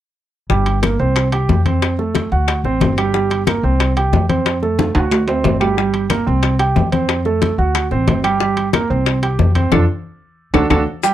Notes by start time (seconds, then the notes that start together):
0.50 G1 G3 G4, high bongo, high conga
0.66 high bongo, high conga, high timbale
0.82 A#3 A#4, high bongo, high conga, high timbale, claves
0.99 C2 C4 C5
1.16 high bongo, high conga, high timbale, claves
1.32 G4 G5, high bongo, high conga, high timbale
1.49 F2, high bongo, low bongo, high conga, low timbale
1.66 C4 C5, high bongo, high conga, high timbale
1.82 high bongo, high conga, high timbale, claves
1.99 A3 A4, high bongo, high conga
2.15 high bongo, high conga, high timbale
2.32 D2 F#4 F#5, high conga
2.48 high bongo, high conga, high timbale, claves
2.64 A1 C4 C5, high bongo, high conga
2.80 G1, high bongo, low bongo, high conga, high timbale, low timbale
2.97 G3 G4, high bongo, high conga, high timbale, claves
3.14 G3 G4, high bongo, high conga
3.30 high bongo, high conga, high timbale
3.47 A#3 A#4, high bongo, high conga, high timbale, claves
3.63 C2 C4 C5
3.80 high bongo, high conga, high timbale, claves
3.97 G4 G5, high bongo, high conga, high timbale
4.13 F2, high bongo, low bongo, high conga, low timbale
4.29 C4 C5, high bongo, high conga, high timbale
4.46 high bongo, high conga, high timbale, claves
4.62 A3 A4, high bongo, high conga
4.79 high bongo, high conga, high timbale
4.95 D2 F#4 F#5, high conga, high timbale
5.11 high bongo, high conga, low timbale, claves
5.28 C4 C5, high bongo, high conga, low timbale
5.44 G1, high bongo, low bongo, high conga, low timbale
5.60 G3 G4, high bongo, high conga, low timbale, claves
5.77 G3 G4, high bongo, high conga
5.94 high bongo, high conga, high timbale
6.10 A#3 A#4, high bongo, high conga, high timbale, claves
6.27 C2 C4 C5
6.43 high bongo, high conga, high timbale, claves
6.59 G4 G5, high bongo, high conga, high timbale
6.76 F2, high bongo, low bongo, high conga, low timbale
6.92 C4 C5, high bongo, high conga, high timbale
7.09 high bongo, high conga, high timbale, claves
7.25 A3 A4, high bongo, high conga
7.42 high bongo, high conga, high timbale
7.58 D2 F#4 F#5, high conga
7.75 high bongo, high conga, high timbale, claves
7.91 A1 C4 C5, high bongo, high conga
8.08 G1, high bongo, low bongo, high conga, high timbale, low timbale
8.24 G3 G4, high bongo, high conga, high timbale, claves
8.40 G3 G4, high bongo, high conga
8.57 high bongo, high conga, high timbale
8.73 A#3 A#4, high bongo, high conga, high timbale, claves
8.90 C2 C4 C5
9.06 high bongo, high conga, high timbale, claves
9.23 G4 G5, high bongo, high conga, high timbale
9.39 F2, high bongo, low bongo, high conga, low timbale
9.55 C4 C5, high bongo, high conga, high timbale
9.72 F2 D4 F4 A4, low bongo, high conga, high timbale, claves
10.53 D2 D4 F#4 A4, low bongo, high conga, high timbale, claves
10.70 D2 D4 F#4 A4, low bongo, high conga, high timbale, claves
11.03 G3 G4 G5, high bongo, high conga, maracas